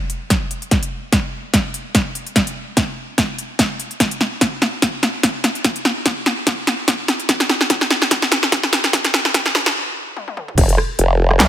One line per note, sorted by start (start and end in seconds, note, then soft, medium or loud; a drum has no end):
0.10 closed hi-hat medium
0.30 kick medium
0.30 snare medium
0.30 closed hi-hat medium
0.51 closed hi-hat medium
0.62 closed hi-hat soft
0.71 kick loud
0.71 snare medium
0.71 closed hi-hat medium
0.83 closed hi-hat medium
1.12 kick medium
1.12 snare medium
1.12 closed hi-hat medium
1.54 kick medium
1.54 snare medium
1.54 closed hi-hat medium
1.74 closed hi-hat soft
1.95 kick loud
1.95 snare medium
1.95 closed hi-hat medium
2.15 closed hi-hat soft
2.27 closed hi-hat soft
2.36 kick medium
2.36 snare medium
2.36 closed hi-hat medium
2.47 closed hi-hat soft
2.77 kick loud
2.77 snare medium
2.77 closed hi-hat medium
3.18 kick loud
3.18 snare medium
3.18 closed hi-hat medium
3.38 closed hi-hat soft
3.59 kick loud
3.59 snare medium
3.59 closed hi-hat medium
3.80 closed hi-hat soft
3.91 closed hi-hat soft
4.00 kick loud
4.00 snare medium
4.00 closed hi-hat medium
4.11 closed hi-hat medium
4.21 snare medium
4.41 kick loud
4.41 snare medium
4.41 closed hi-hat medium
4.62 snare medium
4.82 kick loud
4.82 snare medium
4.82 closed hi-hat medium
5.03 snare medium
5.03 closed hi-hat soft
5.23 kick loud
5.23 snare medium
5.23 closed hi-hat medium
5.44 snare medium
5.44 closed hi-hat soft
5.55 closed hi-hat soft
5.64 kick loud
5.64 snare medium
5.64 closed hi-hat medium
5.76 closed hi-hat medium
5.85 snare medium
6.06 kick loud
6.06 snare medium
6.06 closed hi-hat medium
6.26 snare medium
6.47 kick loud
6.47 snare medium
6.47 closed hi-hat medium
6.67 snare medium
6.67 closed hi-hat medium
6.88 kick loud
6.88 snare medium
6.88 closed hi-hat medium
7.08 snare medium
7.08 closed hi-hat medium
7.20 closed hi-hat soft
7.29 kick loud
7.29 snare medium
7.29 closed hi-hat medium
7.40 snare medium
7.40 closed hi-hat medium
7.49 snare medium
7.61 snare medium
7.70 kick loud
7.70 snare medium
7.70 closed hi-hat medium
7.81 snare medium
7.91 snare medium
8.02 snare medium
8.11 kick loud
8.11 snare loud
8.11 closed hi-hat medium
8.22 snare medium
8.32 snare loud
8.32 closed hi-hat medium
8.43 snare medium
8.52 kick loud
8.52 snare loud
8.52 closed hi-hat medium
8.63 snare medium
8.73 snare loud
8.73 closed hi-hat medium
8.84 snare medium
8.84 closed hi-hat soft
8.93 kick loud
8.93 snare loud
8.93 closed hi-hat medium
9.05 snare medium
9.05 closed hi-hat medium
9.14 snare loud
9.25 snare medium
9.34 kick loud
9.34 snare loud
9.34 closed hi-hat medium
9.46 snare medium
9.55 snare loud
9.66 snare medium
10.17 high tom medium
10.28 high tom medium
10.37 mid tom medium
10.48 mid tom medium
10.58 10.77 F1 loud
10.58 kick loud
10.58 closed hi-hat medium
10.58 crash loud
10.69 closed hi-hat medium
10.78 cross-stick soft
10.99 11.38 F1 loud
10.99 closed hi-hat medium
11.31 cross-stick medium
11.40 11.48 C2 medium
11.40 snare loud
11.40 clap loud
11.40 closed hi-hat medium